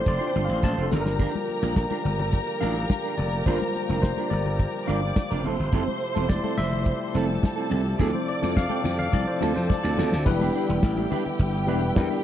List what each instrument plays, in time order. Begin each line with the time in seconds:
Already playing: tonewheel organ D3 F3 A3 C4 G4, tine electric piano F3 C4 E4 A4 C5 D5, string section C5 C6
0.05 slap bass F1, tine electric piano D5, muted clean electric guitar stroke, kick, closed hi-hat, muted conga
0.19 clean electric guitar D4 F4 C5, closed hi-hat
0.27 tine electric piano G5
0.34 slap bass G1, clean electric guitar D4 F4 C5, closed hi-hat, muted conga, high conga
0.45 tine electric piano F5
0.49 slap bass A1, closed hi-hat
0.63 slap bass A1, tine electric piano A5, muted clean electric guitar stroke, kick, snare, muted conga, high conga
0.77 slap bass F1, clean electric guitar D4 F4 C5
0.82 tine electric piano A4
0.91 slap bass G1, tine electric piano G3 A#3 F4, tonewheel organ G3 A#3 G4, clean electric guitar D4 F4 A#4, string section A#4 A#5, snare, muted conga, low conga
1.01 tine electric piano A#4
1.06 snare
1.19 clean electric guitar D4 F4 A#4, kick, closed hi-hat
1.34 muted clean electric guitar stroke, high conga
1.48 muted clean electric guitar stroke, closed hi-hat, muted conga
1.62 slap bass A#1, clean electric guitar D4 F4 A#4, closed hi-hat, high conga
1.76 muted clean electric guitar stroke, kick, snare, muted conga
1.90 clean electric guitar D4 F4 A#4, high conga
2.04 slap bass G1, muted clean electric guitar stroke, closed hi-hat, high conga, low conga
2.19 muted clean electric guitar stroke, closed hi-hat, low conga
2.32 muted clean electric guitar stroke, kick, closed hi-hat, muted conga
2.47 muted clean electric guitar stroke, closed hi-hat
2.60 slap bass A1, clean electric guitar D4 F4 A#4, tine electric piano F5, closed hi-hat, muted conga, high conga
2.75 muted clean electric guitar stroke, closed hi-hat
2.90 muted clean electric guitar stroke, kick, snare, muted conga, high conga
3.03 clean electric guitar D4 F4 A#4, closed hi-hat
3.17 slap bass F1, tine electric piano D5, muted clean electric guitar stroke, closed hi-hat, muted conga, low conga
3.33 muted clean electric guitar stroke, closed hi-hat
3.45 slap bass G1, tine electric piano G3 A#3 F4 C5, clean electric guitar D4 F4 A#4, kick, closed hi-hat, muted conga
3.60 tine electric piano A#4, muted clean electric guitar stroke, closed hi-hat, high conga
3.75 muted clean electric guitar stroke, closed hi-hat, muted conga
3.89 slap bass F1, clean electric guitar D4 F4 A#4, closed hi-hat, high conga
4.02 tine electric piano C5, muted clean electric guitar stroke, kick, snare, muted conga
4.17 clean electric guitar D4 F4 A#4, closed hi-hat, high conga
4.30 slap bass G1, tine electric piano D5, closed hi-hat, muted conga, high conga, low conga
4.34 muted clean electric guitar stroke
4.46 muted clean electric guitar stroke, closed hi-hat, low conga
4.59 muted clean electric guitar stroke, kick, closed hi-hat
4.74 muted clean electric guitar stroke, closed hi-hat
4.87 slap bass G1, clean electric guitar D4 F4 A#4, string section D5 D6, tine electric piano F5, closed hi-hat, muted conga, high conga
5.02 muted clean electric guitar stroke, closed hi-hat
5.16 muted clean electric guitar stroke, kick, snare, muted conga, high conga
5.30 slap bass F1, clean electric guitar D4 F4 A#4, closed hi-hat
5.44 slap bass F1, tonewheel organ C3 F3 A3 E4, clean electric guitar C4 E4 A4, string section C5 C6, closed hi-hat, muted conga, low conga
5.59 slap bass G1, closed hi-hat
5.73 slap bass F1, clean electric guitar C4 E4 A4, kick, closed hi-hat
5.86 muted clean electric guitar stroke, high conga
6.01 muted clean electric guitar stroke, closed hi-hat
6.15 slap bass E1, clean electric guitar C4 E4 A4, closed hi-hat, high conga
6.29 tine electric piano G3 A3 E4 D5, kick, snare, muted conga
6.44 clean electric guitar C4 E4 A4, high conga
6.58 slap bass F1, tine electric piano E5, closed hi-hat, muted conga, high conga, low conga
6.72 muted clean electric guitar stroke, closed hi-hat, low conga
6.85 kick, closed hi-hat
7.00 muted clean electric guitar stroke, closed hi-hat
7.14 slap bass F1, tine electric piano G3 A3 E4 C5, clean electric guitar C4 E4 A4, string section A4 A5, closed hi-hat, muted conga, high conga
7.29 muted clean electric guitar stroke, closed hi-hat
7.43 muted clean electric guitar stroke, kick, snare, muted conga, high conga
7.56 clean electric guitar C4 E4 A4, closed hi-hat
7.70 slap bass C2, clean electric guitar C4 E4 A4, tine electric piano G4, closed hi-hat, muted conga, low conga
7.86 muted clean electric guitar stroke, closed hi-hat
7.99 slap bass D2, tine electric piano F3 C4 E4 A4, tonewheel organ F3 D4 A4, clean electric guitar C4 F4 A4, string section D5 D6, kick, closed hi-hat, muted conga
8.14 tine electric piano C5, muted clean electric guitar stroke, high conga
8.28 tine electric piano D5, muted clean electric guitar stroke, closed hi-hat, muted conga
8.42 slap bass F2, clean electric guitar C4 F4 A4, closed hi-hat, high conga
8.56 tine electric piano F5, kick, snare, muted conga
8.69 clean electric guitar C4 F4 A4, tine electric piano G5, closed hi-hat, high conga
8.84 slap bass F2, open hi-hat, muted conga, high conga, low conga
8.98 tine electric piano F5, muted clean electric guitar stroke, closed hi-hat, low conga
9.11 slap bass C2, tine electric piano F3 C4 E4 D5, muted clean electric guitar stroke, kick, closed hi-hat, muted conga
9.27 tine electric piano C5, muted clean electric guitar stroke, closed hi-hat
9.41 slap bass D2, clean electric guitar C4 F4 A4, string section A4 A5, closed hi-hat, muted conga, high conga
9.55 slap bass F2, tine electric piano C5, muted clean electric guitar stroke, closed hi-hat
9.69 tine electric piano D5, muted clean electric guitar stroke, kick, snare, muted conga, high conga
9.83 slap bass D2, clean electric guitar C4 F4 A4, tine electric piano D5
9.97 slap bass D2, clean electric guitar C4 F4 A4, snare, muted conga, low conga
10.12 slap bass D2, muted clean electric guitar stroke, snare
10.25 slap bass E1, tonewheel organ D3 E3 G3 B3 E4, tine electric piano G3 B3 D4 E4 B4, string section G4 G5, muted clean electric guitar stroke, kick, crash, muted conga
10.40 clean electric guitar D4 G4 B4, closed hi-hat, high conga
10.54 clean electric guitar D4 G4 B4, closed hi-hat, muted conga
10.69 slap bass E1, muted clean electric guitar stroke, closed hi-hat, high conga
10.83 slap bass A1, muted clean electric guitar stroke, kick, snare, muted conga
10.97 clean electric guitar D4 G4 B4, closed hi-hat, high conga
11.11 clean electric guitar D4 G4 B4, closed hi-hat, high conga, low conga
11.26 muted clean electric guitar stroke, closed hi-hat, low conga
11.39 slap bass G1, kick, closed hi-hat, muted conga
11.53 muted clean electric guitar stroke, closed hi-hat
11.67 slap bass E1, tine electric piano G3 B3 D4 E4 B4, clean electric guitar D4 G4 B4, closed hi-hat, high conga
11.82 muted clean electric guitar stroke, snare, closed hi-hat
11.95 slap bass E2, tine electric piano G3 B3 D4 E4 A#4, muted clean electric guitar stroke, kick, snare, high conga
12.09 clean electric guitar D4 G4 B4, closed hi-hat